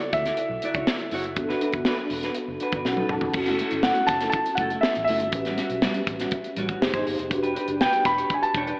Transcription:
Already playing: tine electric piano C#3 E4 F#4 A4, grand piano D5
0.00 muted clean electric guitar stroke, closed hi-hat
0.13 fingered electric bass D2, grand piano E5, muted clean electric guitar stroke, kick, closed hi-hat
0.25 clean electric guitar E4 F#4 D5, snare, closed hi-hat
0.37 muted clean electric guitar stroke, closed hi-hat
0.49 fingered electric bass B1, muted clean electric guitar stroke
0.62 clean electric guitar E4 F#4 D5, closed hi-hat
0.74 fingered electric bass C#2, clean electric guitar E4 F#4 C#5, kick, closed hi-hat
0.87 snare
0.99 muted clean electric guitar stroke, closed hi-hat
1.11 fingered electric bass F#1, clean electric guitar E4 F#4 C#5, open hi-hat
1.24 muted clean electric guitar stroke, closed hi-hat
1.36 fingered electric bass G1, tine electric piano B3 D4 F#4 A4, muted clean electric guitar stroke, kick, closed hi-hat
1.49 clean electric guitar D4 F#4 B4, snare
1.61 clean electric guitar D4 F#4 B4, closed hi-hat
1.73 fingered electric bass G1, muted clean electric guitar stroke, kick, closed hi-hat
1.85 clean electric guitar D4 F#4 B4, snare
1.99 muted clean electric guitar stroke
2.10 fingered electric bass E1, muted clean electric guitar stroke, open hi-hat
2.23 clean electric guitar D4 F#4 B4, snare, closed hi-hat
2.35 muted clean electric guitar stroke, closed hi-hat
2.48 fingered electric bass F#1, muted clean electric guitar stroke
2.60 clean electric guitar D4 F#4 B4, closed hi-hat
2.72 fingered electric bass G1, clean electric guitar F#4 B4, kick, closed hi-hat
2.76 clean electric guitar D4
2.85 fingered electric bass B1, tine electric piano C#4 D#4 F#4 G#4 F#5, muted clean electric guitar stroke, snare
2.92 tine electric piano A4
2.97 clean electric guitar D#4 A4 B4, high tom
3.09 fingered electric bass E1, tine electric piano A5, muted clean electric guitar stroke, mid tom
3.21 muted clean electric guitar stroke, floor tom
3.33 fingered electric bass F#1, tine electric piano C#4 E4 F#4 A4, muted clean electric guitar stroke, kick, crash
3.46 clean electric guitar E4 F#4, snare, closed hi-hat
3.50 clean electric guitar A3
3.59 clean electric guitar A3 E4 F#4, closed hi-hat
3.71 fingered electric bass G1, muted clean electric guitar stroke, closed hi-hat
3.83 clean electric guitar A3 E4, grand piano F#5, snare
3.87 clean electric guitar F#4
3.95 muted clean electric guitar stroke, closed hi-hat
4.07 fingered electric bass F#1, grand piano A5, muted clean electric guitar stroke, kick, snare, closed hi-hat
4.21 clean electric guitar A3 E4 A4, snare, closed hi-hat
4.30 grand piano A5, kick, closed hi-hat
4.35 muted clean electric guitar stroke
4.46 muted clean electric guitar stroke, closed hi-hat
4.55 fingered electric bass F#1, grand piano F#5, kick, closed hi-hat
4.59 clean electric guitar A3 E4 A4
4.70 clean electric guitar A3 E4 F#4, closed hi-hat
4.81 grand piano E5, snare
4.95 fingered electric bass A1, muted clean electric guitar stroke, closed hi-hat
5.04 grand piano E5, open hi-hat
5.08 fingered electric bass F#1, clean electric guitar A3 E4 F#4
5.20 fingered electric bass G1, muted clean electric guitar stroke, closed hi-hat
5.31 fingered electric bass A1, tine electric piano C#4 F#4 G4 B4, muted clean electric guitar stroke, kick, closed hi-hat
5.45 clean electric guitar G3 C#4 F#4, snare, closed hi-hat
5.57 clean electric guitar G3 C#4 F#4, snare, closed hi-hat
5.70 fingered electric bass B1, muted clean electric guitar stroke, closed hi-hat
5.82 clean electric guitar G3 C#4 F#4, snare
5.94 muted clean electric guitar stroke, closed hi-hat
6.07 fingered electric bass A1, muted clean electric guitar stroke, kick, closed hi-hat
6.20 clean electric guitar G3 C#4 F#4, snare, closed hi-hat
6.31 muted clean electric guitar stroke, kick, closed hi-hat
6.44 muted clean electric guitar stroke, closed hi-hat
6.56 fingered electric bass A1, clean electric guitar G3 C#4 F#4, closed hi-hat
6.69 clean electric guitar G3 C#4 F#4, kick, closed hi-hat
6.81 fingered electric bass F1, tine electric piano D#4 G4 G#4 C5, muted clean electric guitar stroke, snare
6.94 fingered electric bass G#1, clean electric guitar D#4 G#4 C5, kick, closed hi-hat
7.06 fingered electric bass G1, muted clean electric guitar stroke, open hi-hat
7.18 fingered electric bass F1, muted clean electric guitar stroke, closed hi-hat
7.29 fingered electric bass E1, tine electric piano D4 F#4 G4 B4, muted clean electric guitar stroke, kick, closed hi-hat
7.43 clean electric guitar D4 G4 B4, closed hi-hat
7.55 clean electric guitar D4 G4 B4, closed hi-hat
7.68 fingered electric bass F#1, muted clean electric guitar stroke, closed hi-hat
7.81 clean electric guitar D4 G4 B4, grand piano G5, snare
7.93 muted clean electric guitar stroke, closed hi-hat
8.05 fingered electric bass E1, grand piano B5, muted clean electric guitar stroke, kick, snare, closed hi-hat
8.18 clean electric guitar D4 G4 C#5, closed hi-hat
8.30 muted clean electric guitar stroke, kick, closed hi-hat
8.34 grand piano G#5
8.43 grand piano A5, muted clean electric guitar stroke, closed hi-hat
8.54 fingered electric bass E1, clean electric guitar D4 G4 C#5, kick, closed hi-hat
8.67 clean electric guitar D4 G4 B4, closed hi-hat

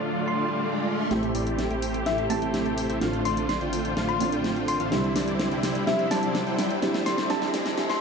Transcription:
Already playing: string section D3 A3 F4, felt piano F3 A3 D4 F4, supersaw synth A3 D4 F4 D5 F5, riser
0.28 synth pluck C6
1.10 detuned saw bass A1, felt piano A2 A3 C4 E4 G4, string section C3 A3 G4, supersaw synth A3 E4 G4 C5 E5, snare, closed hi-hat, riser
1.23 closed hi-hat
1.35 detuned saw bass A1, supersaw synth A3 E4 G4 C5 D5, open hi-hat
1.47 closed hi-hat
1.59 snare, closed hi-hat
1.70 detuned saw bass A1, supersaw synth A3 E4 G4 C5 G5, closed hi-hat
1.82 open hi-hat
1.94 closed hi-hat
2.06 detuned saw bass A1, supersaw synth A3 E4 G4 C5 E5, synth pluck E5, snare, closed hi-hat
2.18 closed hi-hat
2.29 felt piano A2 A3 C4 E4 G4, synth pluck A5, open hi-hat
2.42 detuned saw bass A1, supersaw synth A3 E4 G4 C5 G5, closed hi-hat
2.54 snare, closed hi-hat
2.66 closed hi-hat
2.78 open hi-hat
2.89 detuned saw bass A1, supersaw synth A3 E4 G4 C5 E5, closed hi-hat
3.00 detuned saw bass A1, felt piano A2 A3 C4 D4 F4, string section D3 F4, supersaw synth A3 D4 F4 C5 F5, snare, closed hi-hat
3.13 closed hi-hat
3.25 detuned saw bass A1, supersaw synth A3 D4 F4 C5 D5, synth pluck C6, open hi-hat
3.37 closed hi-hat
3.49 synth pluck C6, snare, closed hi-hat
3.61 detuned saw bass A1, supersaw synth A3 D4 F4 C5 G5, closed hi-hat
3.73 open hi-hat
3.85 closed hi-hat
3.97 detuned saw bass A1, supersaw synth A3 D4 F4 C5 F5, snare, closed hi-hat
4.09 synth pluck C6, closed hi-hat
4.19 felt piano A2 A3 C4 D4 F4, open hi-hat
4.32 detuned saw bass A1, supersaw synth A3 D4 F4 C5 G5, closed hi-hat
4.44 snare, closed hi-hat
4.56 closed hi-hat
4.68 synth pluck C6, open hi-hat
4.80 detuned saw bass A1, supersaw synth A3 D4 F4 C5 F5, closed hi-hat
4.91 detuned saw bass C2, felt piano C3 G3 C4 D4 E4, supersaw synth G3 D4 E4 C5 E5, string section C4 E4, snare, closed hi-hat
5.04 closed hi-hat
5.16 detuned saw bass C2, supersaw synth G3 D4 E4 C5 D5, snare, open hi-hat
5.28 closed hi-hat
5.40 snare, closed hi-hat
5.51 detuned saw bass C2, supersaw synth G3 D4 E4 C5 G5, closed hi-hat
5.63 snare, open hi-hat
5.75 closed hi-hat
5.86 detuned saw bass C2, felt piano C3 G3 C4 D4 E4, supersaw synth G3 D4 E4 C5 E5, synth pluck E5, snare, closed hi-hat
5.99 closed hi-hat
6.11 detuned saw bass C2, supersaw synth G3 D4 E4 C5 D5, synth pluck A5, snare, open hi-hat
6.23 closed hi-hat
6.35 snare, closed hi-hat
6.47 detuned saw bass C2, supersaw synth G3 D4 E4 C5 G5, closed hi-hat
6.59 snare, open hi-hat
6.71 closed hi-hat
6.81 detuned saw bass D2, felt piano C3 G3 C4 D4 E4, string section D3 F3 A3, supersaw synth G3 D4 E4 C5 E5, snare, closed hi-hat
6.94 snare, closed hi-hat
7.06 detuned saw bass D2, supersaw synth G3 D4 E4 C5 D5, synth pluck C6, snare, open hi-hat
7.18 snare, closed hi-hat
7.29 detuned saw bass D2, felt piano C3 G3 C4 D4 E4, supersaw synth G3 D4 E4 C5 E5, synth pluck A5, snare, closed hi-hat
7.42 snare, closed hi-hat
7.54 detuned saw bass D2, supersaw synth G3 D4 E4 C5 D5, snare, open hi-hat
7.66 snare, closed hi-hat
7.76 detuned saw bass D2, felt piano C3 G3 C4 D4 E4, supersaw synth G3 D4 E4 C5 E5, snare, closed hi-hat
7.90 synth pluck C6, snare, closed hi-hat

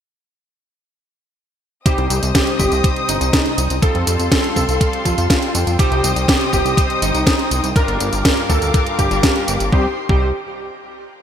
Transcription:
1.86 analog polysynth C3 G3 C4 D#4 C5, electric grand piano G4, string section C5 D#5 G5 D#6, kick, closed hi-hat, tambourine
1.98 analog synth bass C2, closed hi-hat
2.10 analog synth bass C2, closed hi-hat, tambourine
2.23 analog synth bass C2, closed hi-hat, tambourine
2.35 electric grand piano G4, kick, snare, closed hi-hat, tambourine
2.47 closed hi-hat
2.59 analog synth bass G1, electric grand piano G4, kick, tambourine
2.72 analog synth bass C2, closed hi-hat, tambourine
2.84 analog polysynth C3 G3 C4 D#4 C5, kick, closed hi-hat, tambourine
2.96 closed hi-hat
3.09 analog synth bass G1, electric grand piano D#4, closed hi-hat, tambourine
3.21 analog synth bass C2, closed hi-hat, tambourine
3.33 kick, snare, closed hi-hat, tambourine
3.46 closed hi-hat
3.58 analog synth bass C2, closed hi-hat, tambourine
3.70 analog synth bass C2, closed hi-hat, tambourine
3.82 analog polysynth G3 C4 F4 A4, electric grand piano A4, string section A4 F5 C6, kick, closed hi-hat, tambourine
3.95 analog synth bass F2, closed hi-hat
4.07 analog synth bass F2, closed hi-hat, tambourine
4.19 analog synth bass F2, closed hi-hat, tambourine
4.32 electric grand piano A4, kick, snare, closed hi-hat, tambourine
4.44 closed hi-hat
4.56 analog synth bass C2, electric grand piano A4, kick, tambourine
4.69 analog synth bass C2, closed hi-hat, tambourine
4.81 analog polysynth G3 C4 F4 A4, kick, closed hi-hat, tambourine
4.93 closed hi-hat
5.05 analog synth bass F2, electric grand piano F4, kick, closed hi-hat, tambourine
5.18 analog synth bass F2, closed hi-hat, tambourine
5.30 kick, snare, closed hi-hat, tambourine
5.42 closed hi-hat
5.55 analog synth bass F2, closed hi-hat, tambourine
5.67 analog synth bass F2, closed hi-hat, tambourine
5.79 analog polysynth C3 G3 C4 D#4 C5, electric grand piano G4, string section C5 D#5 D#6, kick, closed hi-hat, tambourine
5.92 analog synth bass C2, closed hi-hat
6.04 analog synth bass C2, closed hi-hat, tambourine
6.16 analog synth bass C2, closed hi-hat, tambourine
6.28 electric grand piano G4, kick, snare, closed hi-hat, tambourine
6.41 closed hi-hat
6.53 analog synth bass G1, electric grand piano G4, kick, tambourine
6.65 analog synth bass C2, closed hi-hat, tambourine
6.77 analog polysynth C3 G3 C4 D#4 C5, kick, closed hi-hat, tambourine
6.90 closed hi-hat
7.02 analog synth bass G1, electric grand piano D#4, closed hi-hat, tambourine
7.14 analog synth bass C2, closed hi-hat, tambourine
7.27 kick, snare, closed hi-hat, tambourine
7.39 closed hi-hat
7.51 analog synth bass C2, closed hi-hat, tambourine
7.64 analog synth bass C2, closed hi-hat, tambourine
7.76 analog polysynth G2 G3 D4 F4 A#4, electric grand piano A#4, string section A#4 F5 D6, kick, closed hi-hat, tambourine
7.88 analog synth bass G1, closed hi-hat
8.00 analog synth bass G1, closed hi-hat, tambourine
8.13 analog synth bass G1, closed hi-hat, tambourine
8.25 electric grand piano A#4, kick, snare, closed hi-hat, tambourine
8.37 closed hi-hat
8.49 analog synth bass D2, electric grand piano A4, kick, tambourine
8.62 analog synth bass D2, closed hi-hat, tambourine
8.74 analog polysynth G2 G3 D4 F4 A#4, kick, closed hi-hat, tambourine
8.87 closed hi-hat
8.99 analog synth bass G1, electric grand piano G4, kick, closed hi-hat, tambourine
9.11 analog synth bass G1, analog polysynth G2 G3 D4 F4 A#4, closed hi-hat, tambourine
9.23 kick, snare, closed hi-hat, tambourine
9.36 closed hi-hat
9.48 analog synth bass G1, closed hi-hat, tambourine
9.60 analog synth bass G1, closed hi-hat, tambourine
9.72 analog synth bass C2, analog polysynth G3 C4 D#4 C5, string section D#4 G4 C5 G5 C6, electric grand piano G4, kick
10.09 analog synth bass C2, analog polysynth G3 C4 D#4 C5, electric grand piano G4, kick

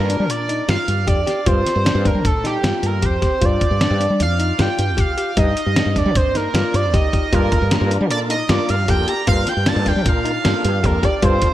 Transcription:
Already playing: analog synth lead A#4
0.00 fretless electric bass G2
0.10 tine electric piano D4, closed hi-hat
0.20 fretless electric bass G3
0.29 fretless electric bass A#2, analog synth lead D5, closed hi-hat
0.49 tine electric piano D#4, closed hi-hat
0.68 fretless electric bass G2, tine electric piano F4, analog synth lead F5, snare, closed hi-hat
0.88 fretless electric bass G2, closed hi-hat
1.07 fretless electric bass F2, tine electric piano G4, analog synth lead D5, kick, closed hi-hat
1.27 tine electric piano G4, snare, closed hi-hat
1.40 analog synth lead D5
1.46 fretless electric bass G2, tine electric piano F4, analog synth lead C5, kick, closed hi-hat
1.66 snare, closed hi-hat
1.76 fretless electric bass G2
1.85 tine electric piano D4, snare, closed hi-hat
1.95 fretless electric bass G2
2.05 tine electric piano D4, analog synth lead A#4, kick, closed hi-hat
2.15 fretless electric bass G3
2.25 fretless electric bass A#2, analog synth lead A4, kick, closed hi-hat
2.44 tine electric piano D#4, analog synth lead G4, snare, closed hi-hat
2.63 fretless electric bass G2, tine electric piano F4, snare, closed hi-hat
2.83 fretless electric bass G2, analog synth lead A#4, closed hi-hat
3.02 fretless electric bass F2, tine electric piano G4, analog synth lead C5, kick, closed hi-hat
3.22 tine electric piano G4, kick, snare, closed hi-hat
3.41 fretless electric bass G2, tine electric piano F4, analog synth lead D5, kick, closed hi-hat
3.61 kick, closed hi-hat
3.71 fretless electric bass G2
3.81 tine electric piano D4, snare, closed hi-hat
3.90 fretless electric bass G2
4.00 tine electric piano D4, closed hi-hat
4.10 fretless electric bass G3
4.20 fretless electric bass F2, analog synth lead F5, closed hi-hat
4.39 tine electric piano D#4, closed hi-hat
4.59 fretless electric bass G2, tine electric piano F4, analog synth lead G5, snare, closed hi-hat
4.78 fretless electric bass G2, closed hi-hat
4.97 fretless electric bass C2, tine electric piano G4, analog synth lead F5, kick, closed hi-hat
5.17 tine electric piano G4, closed hi-hat
5.37 fretless electric bass G2, tine electric piano D#4, analog synth lead D#5, kick, closed hi-hat
5.57 closed hi-hat
5.66 fretless electric bass G2
5.76 tine electric piano D4, snare, closed hi-hat
5.86 fretless electric bass G2
5.96 tine electric piano D4, analog synth lead D5, kick, snare, closed hi-hat
6.06 fretless electric bass G3
6.15 fretless electric bass G2, analog synth lead C5, kick, closed hi-hat
6.35 tine electric piano D#4, analog synth lead A#4, snare, closed hi-hat
6.54 fretless electric bass G2, tine electric piano F4, snare, closed hi-hat
6.74 fretless electric bass G2, analog synth lead D5, closed hi-hat
6.93 fretless electric bass D2, tine electric piano G4, analog synth lead D#5, kick, snare, closed hi-hat
7.13 tine electric piano G4, kick, closed hi-hat
7.32 fretless electric bass G2, tonewheel organ A#3 D4 F4 A4, tine electric piano F4, analog synth lead A#4, kick, closed hi-hat
7.52 kick, closed hi-hat
7.62 fretless electric bass G2
7.71 tonewheel organ A#3 D4 F4 A#4, tine electric piano D4, snare, closed hi-hat
7.81 fretless electric bass G2
7.91 tine electric piano D4, closed hi-hat
8.01 fretless electric bass G3
8.10 fretless electric bass A#2, tonewheel organ A#3 D4 F4 A4, analog synth lead D5, closed hi-hat
8.30 tine electric piano D#4, analog synth lead D#5, closed hi-hat
8.49 fretless electric bass G2, tonewheel organ A#3 D4 F4 A#4, tine electric piano F4, analog synth lead D5, snare, closed hi-hat
8.69 fretless electric bass G2, analog synth lead F5, closed hi-hat
8.88 fretless electric bass F2, tonewheel organ A#3 D4 F4 A4, tine electric piano G4, analog synth lead G5, kick, closed hi-hat
9.08 tine electric piano G4, analog synth lead A#5, closed hi-hat
9.27 fretless electric bass G2, tonewheel organ A#3 D4 F4 C5, tine electric piano F4, analog synth lead F5, kick, closed hi-hat
9.47 analog synth lead G5, snare, closed hi-hat
9.57 fretless electric bass G2
9.66 tonewheel organ A#3 D4 F4 A4, tine electric piano D4, analog synth lead A5, snare, closed hi-hat
9.76 fretless electric bass G2
9.86 tine electric piano D4, analog synth lead G5, kick, snare, closed hi-hat
9.96 fretless electric bass G3
10.06 fretless electric bass A#2, tonewheel organ A#3 D4 F4 A#4, analog synth lead F5, kick, closed hi-hat
10.25 tine electric piano D#4, closed hi-hat
10.44 fretless electric bass G2, tonewheel organ A#3 D4 F4 A4, tine electric piano F4, snare, closed hi-hat
10.65 fretless electric bass G2, closed hi-hat
10.83 fretless electric bass F2, tonewheel organ A#3 D4 F4 A4, tine electric piano G4, analog synth lead A#4, kick, closed hi-hat
11.03 tine electric piano G4, analog synth lead D5, kick, closed hi-hat
11.15 analog synth lead D5
11.22 fretless electric bass G2, tonewheel organ C4 D4 F4 A4, tine electric piano F4, analog synth lead C5, kick, closed hi-hat
11.42 kick, closed hi-hat

